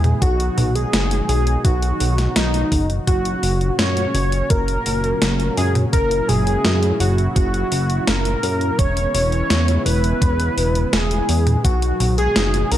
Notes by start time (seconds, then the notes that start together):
Already playing: E2 C#3 E3 G#3 B3 E4 G#4
0.04 closed hi-hat, mid tom
0.22 B1 B2 D#3 F#3 D#4 F#4, kick, closed hi-hat
0.40 closed hi-hat
0.58 B1, mid tom, open hi-hat
0.75 G#4, closed hi-hat
0.93 F#1, snare, closed hi-hat
1.11 closed hi-hat
1.29 B1 G#4, open hi-hat
1.47 closed hi-hat
1.64 B1 F#4, kick, closed hi-hat
1.82 closed hi-hat
2.00 B1, open hi-hat
2.18 snare, closed hi-hat
2.36 B1 D#4, snare, closed hi-hat
2.54 closed hi-hat
2.72 F#1, kick, open hi-hat
2.90 closed hi-hat
3.07 F#1 A#2 C#3 F#3 C#4 F#4, kick, closed hi-hat
3.25 closed hi-hat
3.43 F#1, open hi-hat
3.61 closed hi-hat
3.79 F#2 C#5, snare, closed hi-hat
3.97 closed hi-hat
4.15 F#1, open hi-hat
4.32 closed hi-hat
4.50 F#1 A#4, kick, closed hi-hat
4.68 closed hi-hat
4.86 F#1, open hi-hat
5.04 closed hi-hat
5.22 F#1, snare, closed hi-hat
5.40 closed hi-hat
5.57 F#2 G#4, open hi-hat
5.75 closed hi-hat, mid tom
5.93 F#1 E4 A#4, kick, closed hi-hat
6.11 closed hi-hat
6.28 F#1 G#4, mid tom, open hi-hat
6.47 closed hi-hat
6.65 F#2, snare, closed hi-hat
6.83 closed hi-hat
7.00 F#1 F#4, open hi-hat
7.18 closed hi-hat
7.35 F#1 F#4, kick, closed hi-hat
7.54 closed hi-hat
7.72 F#1, open hi-hat
7.90 closed hi-hat
8.07 F#1 A#4, snare, closed hi-hat
8.25 closed hi-hat
8.43 F#2, open hi-hat
8.61 closed hi-hat
8.79 E1 C#3 E3 G#3 B3 E4 C#5, kick, closed hi-hat
8.97 closed hi-hat
9.14 E1 C#5, open hi-hat
9.32 closed hi-hat
9.50 E2, snare, closed hi-hat
9.68 closed hi-hat
9.86 E1 B4, open hi-hat
10.04 closed hi-hat
10.22 E1, kick, closed hi-hat
10.40 closed hi-hat
10.57 E1, open hi-hat
10.75 closed hi-hat
10.93 E1 G#4, snare, closed hi-hat
11.11 closed hi-hat
11.29 E2, open hi-hat
11.47 closed hi-hat, mid tom
11.64 B1 B2 D#3 F#3 D#4 F#4, kick, closed hi-hat
11.82 closed hi-hat
12.00 B1, mid tom, open hi-hat
12.18 G#4, closed hi-hat
12.36 F#1, snare, closed hi-hat
12.54 closed hi-hat
12.71 B1 A#4, open hi-hat